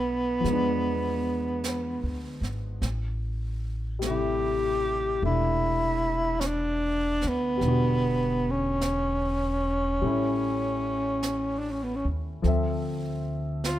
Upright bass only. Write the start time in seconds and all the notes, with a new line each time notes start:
Already playing: B1
0.44 E2
2.03 D2
2.41 G#1
2.82 A1
5.22 E1
7.24 D2
7.61 E1
10.02 A1
12.05 D#2
12.44 D2